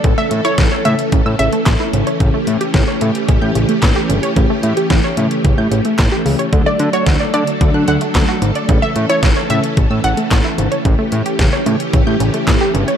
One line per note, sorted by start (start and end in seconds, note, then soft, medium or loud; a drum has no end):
0.00 6.49 E3 medium
0.00 10.81 A3 medium
0.00 6.49 C#4 medium
0.00 2.16 A4 medium
0.04 0.14 A1 loud
0.04 0.16 C#3 loud
0.04 kick loud
0.04 closed hi-hat medium
0.18 0.29 A3 medium
0.18 0.28 E5 medium
0.31 0.41 A2 loud
0.31 closed hi-hat medium
0.45 0.56 E4 medium
0.45 0.55 C#5 medium
0.45 closed hi-hat medium
0.58 0.68 A1 loud
0.58 0.70 C#3 medium
0.58 kick loud
0.58 snare loud
0.58 closed hi-hat medium
0.72 0.83 C#5 medium
0.85 0.95 A2 loud
0.85 0.97 C#3 medium
0.85 1.23 E5 medium
0.85 closed hi-hat medium
0.99 closed hi-hat medium
1.12 1.22 A1 loud
1.12 1.24 C#3 medium
1.12 kick loud
1.12 closed hi-hat medium
1.26 1.36 A2 loud
1.26 1.37 E6 medium
1.39 1.49 A1 loud
1.39 1.51 C#3 medium
1.39 1.49 E5 medium
1.39 closed hi-hat medium
1.52 1.64 A3 medium
1.52 closed hi-hat medium
1.66 1.76 A1 loud
1.66 kick loud
1.66 snare loud
1.66 clap medium
1.66 closed hi-hat medium
1.80 1.91 E4 medium
1.93 2.03 G#1 loud
1.93 2.05 C#3 medium
1.93 closed hi-hat medium
2.07 2.18 C#5 medium
2.07 closed hi-hat soft
2.20 2.30 A1 loud
2.20 2.32 C#3 loud
2.20 6.49 G4 loud
2.20 kick loud
2.20 closed hi-hat medium
2.34 2.45 A3 medium
2.47 2.57 A2 loud
2.47 closed hi-hat medium
2.61 2.72 G4 medium
2.61 closed hi-hat medium
2.74 2.84 A1 loud
2.74 2.86 C#3 medium
2.74 kick loud
2.74 snare loud
2.74 closed hi-hat medium
2.88 2.99 C#5 medium
3.01 3.11 A2 loud
3.01 3.13 C#3 medium
3.01 closed hi-hat medium
3.15 closed hi-hat medium
3.28 3.38 A1 loud
3.28 3.40 C#3 medium
3.28 kick loud
3.28 closed hi-hat medium
3.42 3.52 A2 loud
3.42 3.53 G6 medium
3.55 3.65 A1 loud
3.55 3.67 C#3 medium
3.55 closed hi-hat medium
3.69 3.80 A3 medium
3.69 closed hi-hat medium
3.82 3.92 A1 loud
3.82 kick loud
3.82 snare loud
3.82 clap medium
3.82 closed hi-hat medium
3.96 4.07 G4 medium
4.09 4.19 G1 loud
4.09 4.21 C#3 medium
4.09 closed hi-hat medium
4.23 4.34 C#5 medium
4.23 closed hi-hat soft
4.36 4.46 A1 loud
4.36 4.48 C#3 loud
4.36 kick loud
4.36 closed hi-hat medium
4.50 4.61 A3 medium
4.63 4.73 A2 loud
4.63 closed hi-hat medium
4.77 4.88 G4 medium
4.77 closed hi-hat medium
4.90 5.00 A1 loud
4.90 5.02 C#3 medium
4.90 kick loud
4.90 snare loud
4.90 closed hi-hat medium
5.04 5.16 C#5 medium
5.17 5.27 A2 loud
5.17 5.29 C#3 medium
5.17 closed hi-hat medium
5.31 closed hi-hat medium
5.45 5.54 A1 loud
5.45 5.56 C#3 medium
5.45 kick loud
5.45 closed hi-hat medium
5.58 5.68 A2 loud
5.58 5.70 G6 medium
5.71 5.81 A1 loud
5.71 5.83 C#3 medium
5.71 closed hi-hat medium
5.85 5.97 A3 medium
5.85 closed hi-hat medium
5.98 6.09 A1 loud
5.98 kick loud
5.98 snare loud
5.98 clap loud
5.98 closed hi-hat medium
6.12 6.23 G4 medium
6.25 6.35 C#2 loud
6.25 6.37 C#3 medium
6.25 open hi-hat medium
6.39 6.50 C#5 medium
6.39 closed hi-hat soft
6.53 6.62 D2 loud
6.53 6.64 D3 loud
6.53 8.67 F#3 medium
6.53 8.67 D4 medium
6.53 10.81 A4 medium
6.53 kick loud
6.53 closed hi-hat medium
6.66 6.78 A3 medium
6.66 6.76 D5 medium
6.79 6.90 D3 loud
6.79 closed hi-hat medium
6.93 7.05 F#4 medium
6.93 7.03 C#5 medium
6.93 closed hi-hat medium
7.06 7.17 D2 loud
7.06 7.18 D3 medium
7.06 kick loud
7.06 snare loud
7.06 closed hi-hat medium
7.20 7.32 D5 medium
7.34 7.44 D3 loud
7.34 7.45 D3 medium
7.34 7.72 D5 medium
7.34 closed hi-hat medium
7.47 closed hi-hat medium
7.61 7.71 D2 loud
7.61 7.72 D3 medium
7.61 kick loud
7.61 closed hi-hat medium
7.74 7.84 D3 medium
7.74 7.86 F#6 medium
7.88 7.98 D2 loud
7.88 7.99 D3 medium
7.88 7.98 F#5 medium
7.88 closed hi-hat medium
8.01 8.13 A3 medium
8.01 closed hi-hat medium
8.15 8.25 D2 loud
8.15 kick loud
8.15 snare loud
8.15 clap medium
8.15 closed hi-hat medium
8.28 8.40 F#4 medium
8.42 8.52 G#1 loud
8.42 8.53 D3 medium
8.42 closed hi-hat medium
8.55 8.67 D5 medium
8.55 closed hi-hat soft
8.69 8.79 A1 loud
8.69 8.80 C#3 loud
8.69 10.83 E3 medium
8.69 10.83 C#4 medium
8.69 kick loud
8.69 closed hi-hat medium
8.82 8.94 A3 medium
8.82 8.92 E5 medium
8.96 9.06 A2 loud
8.96 closed hi-hat medium
9.09 9.21 E4 medium
9.09 9.20 C#5 medium
9.09 closed hi-hat medium
9.23 9.33 A1 loud
9.23 9.34 C#3 medium
9.23 kick loud
9.23 snare loud
9.23 closed hi-hat medium
9.37 9.48 C#5 medium
9.50 9.60 A2 loud
9.50 9.61 C#3 medium
9.50 9.88 E5 medium
9.50 closed hi-hat medium
9.64 closed hi-hat medium
9.77 9.87 A1 loud
9.77 9.88 C#3 medium
9.77 kick loud
9.77 closed hi-hat medium
9.91 10.00 A2 loud
9.91 10.02 E6 medium
10.04 10.14 A1 loud
10.04 10.15 C#3 medium
10.04 10.14 F#5 medium
10.04 closed hi-hat medium
10.17 10.29 A3 medium
10.17 closed hi-hat medium
10.31 10.41 A1 loud
10.31 kick loud
10.31 snare loud
10.31 clap medium
10.31 closed hi-hat medium
10.45 10.56 E4 medium
10.58 10.68 G#1 loud
10.58 10.70 C#3 medium
10.58 closed hi-hat medium
10.72 10.83 C#5 medium
10.72 closed hi-hat soft
10.85 10.95 A1 loud
10.85 10.97 C#3 loud
10.85 12.97 E3 medium
10.85 12.97 A3 medium
10.85 12.97 C#4 medium
10.85 12.97 G4 loud
10.85 kick loud
10.85 closed hi-hat medium
10.99 11.10 A3 medium
11.12 11.22 A2 loud
11.12 closed hi-hat medium
11.26 11.37 G4 medium
11.26 closed hi-hat medium
11.39 11.49 A1 loud
11.39 11.51 C#3 medium
11.39 kick loud
11.39 snare loud
11.39 closed hi-hat medium
11.53 11.64 C#5 medium
11.66 11.76 A2 loud
11.66 11.78 C#3 medium
11.66 closed hi-hat medium
11.80 closed hi-hat medium
11.93 12.03 A1 loud
11.93 12.05 C#3 medium
11.93 kick loud
11.93 closed hi-hat medium
12.07 12.17 A2 loud
12.07 12.18 G6 medium
12.20 12.30 A1 loud
12.20 12.32 C#3 medium
12.20 closed hi-hat medium
12.34 12.45 A3 medium
12.34 closed hi-hat medium
12.47 12.57 A1 loud
12.47 kick loud
12.47 snare loud
12.47 clap medium
12.47 closed hi-hat medium
12.61 12.72 G4 medium
12.74 12.84 G1 loud
12.74 12.86 C#3 medium
12.74 closed hi-hat medium
12.88 12.97 C#5 medium
12.88 closed hi-hat soft